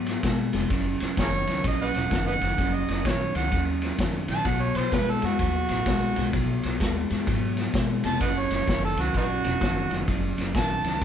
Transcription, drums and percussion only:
0.06 snare soft
0.06 ride medium
0.23 kick medium
0.23 snare loud
0.23 ride medium
0.53 snare soft
0.53 ride medium
0.70 kick medium
0.70 snare soft
0.70 ride medium
1.00 snare soft
1.00 ride medium
1.17 kick medium
1.17 snare loud
1.17 ride medium
1.47 snare soft
1.47 ride medium
1.64 kick medium
1.64 snare soft
1.64 ride medium
1.94 snare soft
1.94 ride medium
2.11 kick medium
2.11 snare loud
2.11 ride medium
2.41 snare soft
2.41 ride medium
2.58 kick medium
2.58 snare soft
2.58 ride medium
2.88 snare soft
2.88 ride medium
3.05 kick medium
3.05 snare loud
3.05 ride medium
3.35 snare soft
3.35 ride medium
3.52 kick medium
3.52 snare soft
3.52 ride medium
3.82 snare soft
3.82 ride medium
3.99 kick medium
3.99 snare loud
3.99 ride medium
4.28 snare soft
4.28 ride medium
4.45 kick medium
4.45 snare soft
4.45 ride medium
4.75 snare soft
4.75 ride medium
4.92 kick medium
4.92 snare loud
4.92 ride medium
5.22 snare soft
5.22 ride medium
5.39 kick medium
5.39 snare soft
5.39 ride medium
5.69 snare soft
5.69 ride medium
5.86 kick medium
5.86 snare loud
5.86 ride medium
6.16 snare soft
6.16 ride medium
6.33 kick medium
6.33 snare soft
6.33 ride medium
6.63 snare soft
6.63 ride medium
6.80 kick medium
6.80 snare loud
6.80 ride medium
7.10 snare soft
7.10 ride medium
7.27 kick medium
7.27 snare soft
7.27 ride medium
7.57 snare soft
7.57 ride medium
7.73 kick medium
7.73 snare loud
7.73 ride medium
8.04 snare soft
8.04 ride medium
8.21 kick medium
8.21 snare soft
8.21 ride medium
8.50 snare soft
8.50 ride medium
8.67 kick medium
8.67 snare loud
8.67 ride medium
8.97 snare soft
8.97 ride medium
9.14 kick medium
9.14 snare soft
9.14 ride medium
9.44 snare soft
9.44 ride medium
9.61 kick medium
9.61 snare loud
9.61 ride medium
9.91 snare soft
9.91 ride medium
10.08 kick medium
10.08 snare soft
10.08 ride medium
10.38 snare soft
10.38 ride medium
10.55 kick medium
10.55 snare loud
10.55 ride medium
10.84 snare soft
10.84 ride medium

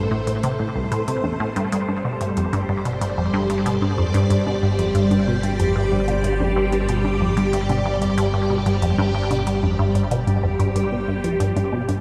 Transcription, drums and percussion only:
0.27 closed hi-hat medium
0.43 closed hi-hat medium
0.92 closed hi-hat medium
1.08 closed hi-hat medium
1.24 high conga medium
1.56 closed hi-hat medium
1.56 high conga medium
1.72 closed hi-hat medium
1.89 high conga medium
2.21 closed hi-hat soft
2.37 closed hi-hat medium
2.53 closed hi-hat soft
2.53 high conga medium
2.85 closed hi-hat medium
3.01 closed hi-hat medium
3.50 closed hi-hat medium
3.66 closed hi-hat medium
3.82 high conga medium
4.14 closed hi-hat medium
4.14 high conga medium
4.30 closed hi-hat medium
4.47 high conga medium
4.79 closed hi-hat soft
4.95 closed hi-hat medium
5.11 closed hi-hat soft
5.11 high conga medium
5.43 closed hi-hat soft
5.60 closed hi-hat medium
6.08 closed hi-hat soft
6.24 closed hi-hat medium
6.40 high conga medium
6.72 closed hi-hat medium
6.72 high conga medium
6.89 closed hi-hat medium
7.05 high conga medium
7.37 closed hi-hat soft
7.53 closed hi-hat medium
7.69 closed hi-hat soft
7.69 high conga medium
8.02 closed hi-hat soft
8.18 closed hi-hat medium
8.66 closed hi-hat soft
8.82 closed hi-hat medium
8.98 high conga medium
9.31 closed hi-hat medium
9.31 high conga medium
9.47 closed hi-hat medium
9.63 high conga medium
9.95 closed hi-hat soft
10.11 closed hi-hat medium
10.27 closed hi-hat soft
10.27 high conga medium
10.60 closed hi-hat soft
10.76 closed hi-hat medium
11.24 closed hi-hat soft
11.40 closed hi-hat medium
11.56 closed hi-hat soft
11.56 high conga medium
11.89 closed hi-hat medium
11.89 high conga medium

